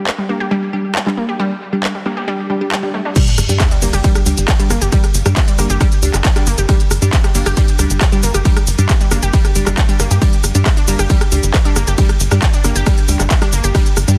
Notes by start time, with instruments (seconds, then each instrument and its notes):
Already playing: synth stab G3 D4 G4
0.07 clap
0.18 synth arpeggio sound G3, snare
0.29 synth stab G3 D4 G4, synth arpeggio sound A#3, open hi-hat
0.40 synth arpeggio sound G4, snare
0.51 synth stab G3 D4 G4, synth arpeggio sound G3, closed hi-hat
0.73 synth stab G3 D4 G4, closed hi-hat
0.95 clap
1.06 synth stab G3 D4 G4, synth arpeggio sound G3, clap
1.17 synth arpeggio sound A#3, closed hi-hat
1.29 synth arpeggio sound G4
1.39 synth stab G3 D4 G4, synth arpeggio sound G3, closed hi-hat
1.62 closed hi-hat
1.72 synth stab G3 D4 G4, snare
1.84 clap
1.95 synth arpeggio sound G3
2.05 synth stab G3 D4 G4, synth arpeggio sound A#3, snare, closed hi-hat
2.11 snare, closed hi-hat
2.17 synth arpeggio sound G4, snare, closed hi-hat
2.22 snare, closed hi-hat
2.28 synth stab G3 D4 G4, synth arpeggio sound G3, closed hi-hat, swell
2.39 closed hi-hat
2.50 synth stab G3 D4 G4, synth arpeggio sound G3, closed hi-hat
2.61 synth stab G3 D4 G4
2.72 snare, clap
2.83 synth stab G3 D4 G4, synth arpeggio sound G3, snare
2.94 synth arpeggio sound A3, snare, closed hi-hat
3.05 synth arpeggio sound D4, snare, closed hi-hat
3.16 synth stab G3 D4 G4, synth arpeggio sound G3, kick, closed hi-hat, ride, crash, sub drop, shaker
3.27 closed hi-hat
3.38 analog synth bass G1, cross-stick, closed hi-hat, open hi-hat, shaker
3.49 analog synth bass G2, synth stab G3 D4 G4, closed hi-hat, shaker
3.59 kick, cross-stick, snare, clap, closed hi-hat, ride, shaker
3.71 synth arpeggio sound G3, snare, closed hi-hat
3.82 analog synth bass G1, synth stab G3 D4 G4, synth arpeggio sound A#3, open hi-hat, shaker
3.93 analog synth bass G1, synth arpeggio sound G4, cross-stick, snare, closed hi-hat, shaker
4.04 synth arpeggio sound G3, synth stab G3 D4 G4, kick, closed hi-hat, ride, shaker
4.15 cross-stick, closed hi-hat
4.26 analog synth bass D2, synth stab G3 D4 G4, closed hi-hat, open hi-hat, shaker
4.37 analog synth bass G1, closed hi-hat, shaker
4.48 kick, cross-stick, snare, clap, closed hi-hat, ride, shaker
4.59 synth stab G3 D4 G4, synth arpeggio sound G3, closed hi-hat
4.70 analog synth bass G1, synth arpeggio sound A#3, cross-stick, closed hi-hat, open hi-hat, shaker
4.81 analog synth bass G1, synth arpeggio sound G4, closed hi-hat, shaker
4.92 synth stab G3 D4 G4, synth arpeggio sound G3, kick, closed hi-hat, ride, shaker
5.04 cross-stick, closed hi-hat
5.14 analog synth bass G1, closed hi-hat, open hi-hat, shaker
5.26 analog synth bass G2, synth stab G3 D4 G4, cross-stick, snare, closed hi-hat, shaker
5.36 kick, snare, clap, closed hi-hat, ride, shaker
5.48 synth arpeggio sound G3, closed hi-hat
5.58 analog synth bass G1, synth stab G3 D4 G4, synth arpeggio sound A#3, cross-stick, closed hi-hat, open hi-hat, shaker
5.70 analog synth bass G1, synth arpeggio sound G4, closed hi-hat, shaker
5.80 synth stab G3 D4 G4, synth arpeggio sound G3, kick, cross-stick, closed hi-hat, ride, shaker
5.91 closed hi-hat
6.02 analog synth bass D2, synth stab G3 D4 G4, closed hi-hat, open hi-hat, shaker
6.14 analog synth bass G1, cross-stick, clap, closed hi-hat, shaker
6.24 kick, snare, clap, closed hi-hat, ride, shaker
6.36 synth stab G3 D4 G4, synth arpeggio sound G3, cross-stick, snare, closed hi-hat
6.47 analog synth bass G1, synth arpeggio sound A#3, closed hi-hat, open hi-hat, shaker
6.58 analog synth bass G1, synth arpeggio sound G4, closed hi-hat, shaker
6.69 synth stab G3 D4 G4, synth arpeggio sound G3, kick, cross-stick, closed hi-hat, ride, shaker
6.80 closed hi-hat
6.91 analog synth bass G1, cross-stick, closed hi-hat, open hi-hat, shaker
7.02 analog synth bass G2, synth stab G3 D4 G4, closed hi-hat, shaker
7.13 kick, snare, clap, closed hi-hat, ride, shaker
7.24 synth arpeggio sound G3, cross-stick, snare, closed hi-hat
7.35 analog synth bass G1, synth stab G3 D4 G4, synth arpeggio sound A#3, open hi-hat, shaker
7.46 analog synth bass G1, synth arpeggio sound G4, cross-stick, snare, closed hi-hat, shaker
7.57 synth stab G3 D4 G4, synth arpeggio sound G3, kick, closed hi-hat, ride, shaker
7.68 closed hi-hat
7.79 analog synth bass D2, synth stab G3 D4 G4, cross-stick, closed hi-hat, open hi-hat, shaker
7.90 analog synth bass G1, closed hi-hat, shaker
8.01 kick, cross-stick, snare, clap, closed hi-hat, ride, shaker
8.12 synth arpeggio sound G3, synth stab G3 D4 G4, closed hi-hat
8.23 analog synth bass G1, synth arpeggio sound A#3, closed hi-hat, open hi-hat, shaker
8.34 analog synth bass G1, synth arpeggio sound G4, cross-stick, closed hi-hat, shaker
8.45 synth stab G3 D4 G4, synth arpeggio sound G3, kick, closed hi-hat, ride, shaker
8.57 cross-stick, closed hi-hat
8.67 analog synth bass G1, closed hi-hat, open hi-hat, shaker
8.78 analog synth bass G2, synth stab G3 D4 G4, closed hi-hat, shaker
8.89 kick, cross-stick, snare, clap, closed hi-hat, ride, shaker
9.01 synth arpeggio sound G3, closed hi-hat
9.11 analog synth bass G1, synth stab G3 D4 G4, synth arpeggio sound A#3, cross-stick, closed hi-hat, open hi-hat, shaker
9.23 analog synth bass G1, synth arpeggio sound G4, closed hi-hat, shaker
9.33 synth arpeggio sound G3, synth stab G3 D4 G4, kick, closed hi-hat, ride, shaker
9.44 cross-stick, closed hi-hat
9.55 analog synth bass G1, synth stab G3 D4 G4, closed hi-hat, open hi-hat, shaker
9.67 analog synth bass G1, synth stab G3 D4 G4, cross-stick, clap, closed hi-hat, shaker
9.78 kick, clap, closed hi-hat, ride, shaker
9.88 synth arpeggio sound G3, synth stab G3 D4 G4, closed hi-hat
10.00 analog synth bass G1, synth arpeggio sound A#3, cross-stick, open hi-hat, shaker
10.11 analog synth bass G2, synth arpeggio sound G4, closed hi-hat, shaker
10.22 synth arpeggio sound G3, synth stab G3 D4 G4, kick, closed hi-hat, ride, shaker
10.33 closed hi-hat
10.44 analog synth bass G1, cross-stick, closed hi-hat, open hi-hat, shaker
10.55 analog synth bass G2, synth stab G3 D4 G4, closed hi-hat, shaker
10.66 kick, cross-stick, snare, clap, closed hi-hat, ride, shaker
10.77 synth arpeggio sound D4, snare, closed hi-hat
10.88 analog synth bass G1, synth stab G3 D4 G4, synth arpeggio sound A#3, open hi-hat, shaker
10.99 analog synth bass G1, synth arpeggio sound G4, cross-stick, snare, closed hi-hat, shaker
11.10 synth arpeggio sound G3, synth stab G3 D4 G4, kick, closed hi-hat, ride, shaker
11.21 cross-stick, closed hi-hat
11.32 analog synth bass D2, synth stab G3 D4 G4, closed hi-hat, open hi-hat, shaker
11.43 analog synth bass G1, closed hi-hat, shaker
11.54 kick, cross-stick, snare, clap, closed hi-hat, ride, shaker
11.65 synth stab G3 D4 G4, synth arpeggio sound D4, closed hi-hat
11.76 analog synth bass G1, synth arpeggio sound A#3, cross-stick, closed hi-hat, open hi-hat, shaker
11.87 analog synth bass G1, synth arpeggio sound G4, closed hi-hat, shaker
11.98 synth stab G3 D4 G4, synth arpeggio sound G3, kick, closed hi-hat, ride, shaker
12.09 cross-stick, closed hi-hat
12.20 analog synth bass G1, closed hi-hat, open hi-hat, shaker
12.31 analog synth bass G2, synth stab G3 D4 G4, cross-stick, snare, closed hi-hat, shaker
12.42 kick, snare, clap, closed hi-hat, ride, shaker
12.53 synth arpeggio sound D4, closed hi-hat
12.64 analog synth bass G1, synth stab G3 D4 G4, synth arpeggio sound A#3, cross-stick, closed hi-hat, open hi-hat, shaker
12.76 analog synth bass G1, synth arpeggio sound G4, closed hi-hat, shaker
12.86 synth arpeggio sound G3, synth stab G3 D4 G4, kick, cross-stick, closed hi-hat, ride, shaker
12.98 closed hi-hat
13.08 analog synth bass D2, synth stab G3 D4 G4, closed hi-hat, open hi-hat, shaker
13.20 analog synth bass G1, cross-stick, clap, closed hi-hat, shaker
13.30 kick, snare, clap, closed hi-hat, ride, shaker
13.42 synth stab G3 D4 G4, synth arpeggio sound D4, cross-stick, snare, closed hi-hat
13.53 analog synth bass G1, synth arpeggio sound A#3, closed hi-hat, open hi-hat, shaker
13.64 analog synth bass G1, synth arpeggio sound G4, closed hi-hat, shaker
13.75 synth stab G3 D4 G4, synth arpeggio sound G3, kick, cross-stick, closed hi-hat, ride, shaker
13.86 closed hi-hat
13.96 analog synth bass G1, cross-stick, closed hi-hat, open hi-hat, shaker
14.08 analog synth bass G2, synth stab G3 D4 G4, closed hi-hat, shaker